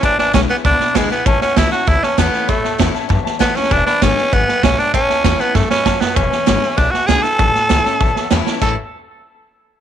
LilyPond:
<<
  \new Staff \with { instrumentName = "Upright piano" } { \time 4/4 \key a \major \tempo 4 = 196 << { r1 | r1 | r1 | r1 |
r1 | r1 | r2 r8 a''16 fis''16 e''4 | r1 | } \\ { <b' e'' gis''>8 <b' e'' gis''>8 <b' e'' gis''>8 <b' e'' gis''>8 <b' e'' b''>8 <b' e'' b''>8 <b' e'' gis''>8 <b' e'' gis''>8 | <cis'' e'' a''>8 <cis'' e'' fis''>8 a''8 <cis'' e'' a''>8 <cis'' a''>8 <cis'' e'' a''>8 <cis'' e'' a''>8 <cis'' e''>8 | <cis'' e'' b''>8 <cis'' e'' a''>8 <cis'' e'' a''>8 <cis'' e'' a''>8 <cis'' e'' a''>8 <cis'' e'' a''>8 <cis'' e'' a''>8 r8 | <b' e'' gis''>8 <b' e'' b''>8 <b' gis''>8 <b' e'' gis''>8 <b' gis''>8 <b' e'' gis''>8 <b' e'' gis''>8 <b' gis''>8 |
<cis'' e'' a''>8 <cis'' e'' a''>8 e''8 <cis'' e'' a''>8 <cis'' e'' a''>8 <cis'' e'' b''>8 <cis'' e'' a''>8 <cis'' e'' a''>8 | <b' e'' gis''>8 <b' e'' gis''>8 <b' gis''>8 <b' e'' gis''>8 <b' e'' gis''>8 <b' e'' gis''>8 <b' gis''>8 <b' e'' gis''>8 | <cis'' e'' a''>8 r8 <cis'' e'' gis''>8 <cis'' e'' a''>8 <cis'' e'' a''>8 <cis'' e''>8 <cis'' a''>8 <cis'' e'' a''>8 | <cis'' e'' a''>8 r2. r8 | } >> }
  \new Staff \with { instrumentName = "Tenor saxophone" } { \time 4/4 \key a \major d'8 d'8 cis'8 b8 d'4 gis8 b8 | cis'8 cis'8 e'8 fis'8 e'8 cis'8 b4 | a4. r4. b8 cis'8 | d'8 d'8 cis'4 b4 cis'8 d'8 |
cis'4. b8 a8 cis'4 b8 | cis'2 d'8 fis'8 gis'8 a'8~ | a'2. r4 | a'8 r2. r8 | }
  \new Staff \with { instrumentName = "Steel-string acoustic guitar" } { \time 4/4 \key a \major << { r4 <d gis b e'>8 <b e'>8 r4 <d gis b e'>8 <b e'>8 | r4 <e a cis' e'>8 <cis' e'>8 r4 <e a cis' e'>4 | r4 <e a cis' e'>8 <cis' e'>8 r4 <e a cis' e'>8 <cis' e'>8 | r4 <d gis b e'>8 <b e'>8 r2 |
r4 <e a cis' e'>8 <cis' e'>8 r2 | r4 <d gis b e'>8 <b e'>8 r4 <d gis b e'>8 <b e'>8 | r4 <e a cis' e'>8 <cis' e'>8 r4 <e a cis' e'>8 <cis' e'>8 | <a, e a cis' e'>8 r2. r8 | } \\ { e,2 b,2 | a,2 e,2 | a,2 e,2 | e,2 fis,4 gis,4 |
a,2 gis,4 fis,4 | e,2 b,2 | a,2 e,2 | r1 | } >> }
  \new Staff \with { instrumentName = "Upright bass" } { \clef bass \time 4/4 \key a \major e,,8 gis,,8 b,,8 r8 cis,8 r8 d,8 cis,8 | a,,8 r8 cis,8 r8 cis,8 r8 e,8 r8 | a,,8 cis,8 e,8 r8 fis,8 r8 fis,8 d,8 | e,,8 r8 gis,,8 r8 gis,,8 r8 b,,8 r8 |
a,,8 cis,8 e,8 r8 fis,8 r8 fis,8 fis,8 | e,,8 r8 gis,,8 r8 b,,8 r8 cis,8 r8 | a,,8 r8 cis,8 r8 a,,8 r8 e,8 r8 | a,,8 r2. r8 | }
  \new DrumStaff \with { instrumentName = "Drums" } \drummode { \time 4/4 <bd sn>8 sn8 <hhp bd sn>8 sn8 <bd sn>8 sn8 <hhp bd sn>8 sn8 | <bd sn>8 sn8 <hhp bd sn>8 sn8 <bd sn>8 sn8 <hhp bd sn>8 sn8 | <bd sn>8 sn8 <hhp bd sn>8 sn8 <bd sn>8 sn8 <hhp bd sn>8 sn16 sn16 | <bd sn>8 sn8 <hhp bd sn>8 sn8 <bd sn>8 sn8 <hhp bd sn>8 sn8 |
<bd sn>8 sn8 <hhp bd sn>8 sn8 <bd sn>8 sn8 <hhp bd sn>8 sn8 | <bd sn>8 sn8 <hhp sn>8 sn8 <bd sn>8 sn8 <hhp sn>8 sn8 | <bd sn>8 sn8 <hhp sn>8 sn8 <bd sn>8 sn8 <hhp sn>8 sn8 | <cymc bd>4 r4 r4 r4 | }
>>